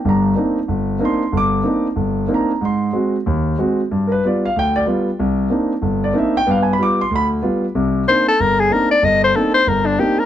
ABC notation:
X:1
M:4/4
L:1/8
Q:"Swing" 1/4=187
K:Cm
V:1 name="Soprano saxophone"
z8 | z8 | z8 | z8 |
z8 | z8 | z2 c =A B _A B d | e c =A c B D G B |]
V:2 name="Grand piano"
b3 z3 c'2 | d'3 z3 b2 | c'3 z4 z | z [B=B] d f g d z2 |
z4 z d =e g | (3f a =b d' c' b z3 | z8 | z8 |]
V:3 name="Grand piano"
[G,,,G,,]2 [B,CDE] z G,,,2 [B,CDE] z | G,,,2 [B,CDE] z G,,,2 [B,CDE] z | A,,2 [A,C_G] z E,,2 [A,CG] z | G,,2 [G,=B,F] z D,,2 [G,B,F] z |
C,,2 [B,CDE] z G,,,2 [B,CDE] z | [G,,=B,]2 [G,B,F] z D,,2 [G,B,F] z | [C,,C,]2 [B,CDE] z G,,,2 [B,CDE] z | G,,,2 [B,CDE] z G,,,2 [B,CDE] z |]